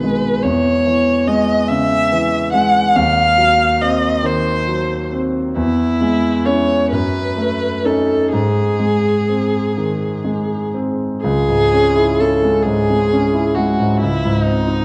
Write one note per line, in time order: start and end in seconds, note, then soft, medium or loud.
0.00 0.40 B1 soft
0.00 0.46 B2 soft
0.00 0.47 D#3 soft
0.00 0.04 G#3 soft
0.00 0.45 G#3 soft
0.00 0.44 B4 medium
0.43 2.92 E2 medium
0.43 1.29 C#5 medium
0.86 1.53 E3 soft
1.27 1.95 G#3 soft
1.27 1.69 D#5 medium
1.68 2.37 C#3 soft
1.68 2.52 E5 medium
2.12 2.79 E3 soft
2.53 2.96 G#3 soft
2.53 2.97 F#5 medium
2.95 5.53 D#2 medium
2.95 3.83 F5 loud
3.38 4.07 F#3 soft
3.81 4.51 C4 medium
3.81 4.27 D#5 medium
4.23 4.94 D#3 soft
4.23 5.13 C5 medium
4.68 5.39 F#3 soft
5.12 5.57 C4 soft
5.56 6.89 E2 medium
5.56 6.47 E4 medium
6.01 6.74 G#3 soft
6.45 6.89 C#4 soft
6.45 6.89 E4 soft
6.45 6.90 C#5 medium
6.91 8.29 F#2 medium
6.91 7.86 B4 medium
7.37 8.13 A3 soft
7.84 8.29 C#4 soft
7.84 8.29 D#4 soft
7.84 8.31 A4 medium
8.32 11.20 G#2 medium
8.32 10.70 G#4 medium
8.79 9.57 G#3 soft
9.29 10.06 C4 soft
9.77 10.55 D#3 soft
10.24 11.04 G#3 soft
10.74 11.24 C4 soft
11.22 13.98 C#2 medium
11.22 12.21 G#4 medium
11.49 11.87 G#2 soft
11.73 12.11 C#4 soft
11.95 12.34 E4 soft
12.20 12.58 C#4 soft
12.20 12.64 A4 medium
12.43 12.81 G#3 soft
12.62 13.03 G#2 soft
12.62 13.56 G#4 medium
12.90 13.27 G#3 soft
13.12 13.49 C#4 soft
13.34 13.70 E4 soft
13.54 13.93 G#3 soft
13.54 14.00 F#4 medium
13.80 14.02 G#2 soft
14.00 14.85 C#2 medium
14.00 14.45 E4 medium
14.25 14.59 G#2 soft
14.43 14.81 C4 soft
14.43 14.85 D#4 medium
14.67 14.85 D#4 soft